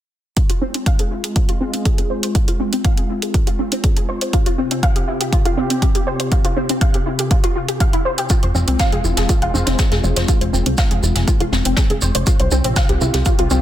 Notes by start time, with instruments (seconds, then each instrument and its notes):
0.37 analog synth pad G#3 C4 F4, synth arpeggio sound F4, kick, closed hi-hat
0.49 synth arpeggio sound F4, closed hi-hat
0.61 synth arpeggio sound C4
0.74 synth arpeggio sound C4, closed hi-hat
0.86 synth arpeggio sound F5, kick, closed hi-hat
0.99 synth arpeggio sound G#4, closed hi-hat
1.11 synth arpeggio sound E4
1.24 synth arpeggio sound G#4, closed hi-hat
1.36 synth arpeggio sound F4, kick, closed hi-hat
1.49 synth arpeggio sound F4, closed hi-hat
1.61 synth arpeggio sound C4
1.73 synth arpeggio sound C4, closed hi-hat
1.85 synth arpeggio sound G#4, kick, closed hi-hat
1.98 synth arpeggio sound G#4, closed hi-hat
2.10 synth arpeggio sound C5
2.23 synth arpeggio sound C5, closed hi-hat
2.35 synth arpeggio sound F4, kick, closed hi-hat
2.48 synth arpeggio sound F4, closed hi-hat
2.60 synth arpeggio sound C4
2.73 synth arpeggio sound C4, closed hi-hat
2.85 synth arpeggio sound F5, kick, closed hi-hat
2.97 synth arpeggio sound G#4, closed hi-hat
3.09 synth arpeggio sound E4
3.22 synth arpeggio sound G#4, closed hi-hat
3.34 synth arpeggio sound F4, kick, closed hi-hat
3.47 synth arpeggio sound F4, closed hi-hat
3.59 synth arpeggio sound C4
3.72 synth arpeggio sound C4, closed hi-hat
3.84 synth arpeggio sound G#4, kick, closed hi-hat
3.97 synth arpeggio sound G#4, closed hi-hat
4.09 synth arpeggio sound C5
4.21 synth arpeggio sound C5, closed hi-hat
4.33 analog synth pad C3 G4, synth arpeggio sound F4, kick, closed hi-hat
4.46 synth arpeggio sound F4, closed hi-hat
4.58 synth arpeggio sound C4
4.71 synth arpeggio sound C4, closed hi-hat
4.83 synth arpeggio sound F5, kick, closed hi-hat
4.96 synth arpeggio sound G4, closed hi-hat
5.08 synth arpeggio sound E4
5.21 synth arpeggio sound G4, closed hi-hat
5.33 synth arpeggio sound F4, kick, closed hi-hat
5.45 synth arpeggio sound F4, closed hi-hat
5.57 synth arpeggio sound C4
5.70 synth arpeggio sound C4, closed hi-hat
5.82 synth arpeggio sound G4, kick, closed hi-hat
5.95 synth arpeggio sound G4, closed hi-hat
6.07 synth arpeggio sound C5
6.20 synth arpeggio sound C5, closed hi-hat
6.32 synth arpeggio sound F4, kick, closed hi-hat
6.45 synth arpeggio sound F4, closed hi-hat
6.56 synth arpeggio sound C4
6.69 synth arpeggio sound C4, closed hi-hat
6.81 synth arpeggio sound F5, kick, closed hi-hat
6.94 synth arpeggio sound G4, closed hi-hat
7.06 synth arpeggio sound E4
7.19 synth arpeggio sound G4, closed hi-hat
7.31 synth arpeggio sound F4, kick, closed hi-hat
7.44 synth arpeggio sound F4, closed hi-hat
7.55 synth arpeggio sound F4
7.68 synth arpeggio sound G4, closed hi-hat
7.80 synth arpeggio sound F5, kick, closed hi-hat
7.93 synth arpeggio sound E4, closed hi-hat
8.05 synth arpeggio sound C5
8.18 synth arpeggio sound G4, closed hi-hat
8.30 analog synth pad G#3 C4 F4, synth arpeggio sound F4, kick, closed hi-hat, shaker
8.43 analog synth bass F1, synth arpeggio sound C5, closed hi-hat
8.55 analog synth bass F1, synth arpeggio sound C4, shaker
8.68 analog synth bass C2, synth arpeggio sound C4, closed hi-hat
8.79 synth arpeggio sound F5, kick, snare, closed hi-hat, shaker
8.92 analog synth bass F1, synth arpeggio sound G#4, closed hi-hat
9.04 analog synth bass F1, synth arpeggio sound E4, shaker
9.17 analog synth bass F1, synth arpeggio sound G#4, snare, closed hi-hat
9.29 synth arpeggio sound F4, kick, closed hi-hat, shaker
9.42 analog synth bass F1, synth arpeggio sound F4, closed hi-hat
9.54 analog synth bass F1, synth arpeggio sound C4, shaker
9.66 analog synth bass F1, synth arpeggio sound C4, snare, closed hi-hat
9.79 synth arpeggio sound G#4, kick, snare, closed hi-hat, shaker
9.91 analog synth bass F1, synth arpeggio sound G#4, snare, closed hi-hat
10.03 analog synth bass F1, synth arpeggio sound C5, shaker
10.16 analog synth bass F1, synth arpeggio sound C5, snare, closed hi-hat
10.28 synth arpeggio sound F4, kick, closed hi-hat, shaker
10.41 analog synth bass F1, synth arpeggio sound C5, closed hi-hat
10.53 analog synth bass F1, synth arpeggio sound C4, shaker
10.66 analog synth bass C2, synth arpeggio sound C4, closed hi-hat
10.78 synth arpeggio sound F5, kick, snare, closed hi-hat, shaker
10.91 analog synth bass F1, synth arpeggio sound G#4, closed hi-hat
11.03 analog synth bass F1, synth arpeggio sound E4, shaker
11.15 analog synth bass F1, synth arpeggio sound G#4, snare, closed hi-hat
11.28 synth arpeggio sound F4, kick, closed hi-hat, shaker
11.40 analog synth bass F1, synth arpeggio sound F4, closed hi-hat
11.52 analog synth bass F1, synth arpeggio sound C4, snare, shaker
11.65 analog synth bass F1, synth arpeggio sound C4, closed hi-hat
11.76 synth arpeggio sound G#4, kick, snare, closed hi-hat, shaker
11.90 analog synth bass F1, synth arpeggio sound G#4, closed hi-hat
12.01 analog synth bass F1, synth arpeggio sound C5, shaker
12.15 analog synth bass F1, synth arpeggio sound C5, closed hi-hat
12.27 analog synth pad C3 F4 G4, synth arpeggio sound F4, kick, closed hi-hat, shaker
12.40 analog synth bass C2, synth arpeggio sound C5, closed hi-hat
12.51 analog synth bass C2, synth arpeggio sound C4, shaker
12.64 analog synth bass A#1, synth arpeggio sound C4, closed hi-hat
12.76 synth arpeggio sound F5, kick, snare, closed hi-hat, shaker
12.89 analog synth bass C2, synth arpeggio sound G4, closed hi-hat
13.01 analog synth bass C2, synth arpeggio sound E4, shaker
13.14 analog synth bass C2, synth arpeggio sound G4, snare, closed hi-hat
13.25 synth arpeggio sound F4, kick, closed hi-hat, shaker
13.39 analog synth bass C2, synth arpeggio sound F4, closed hi-hat
13.50 analog synth bass C2, synth arpeggio sound C4, shaker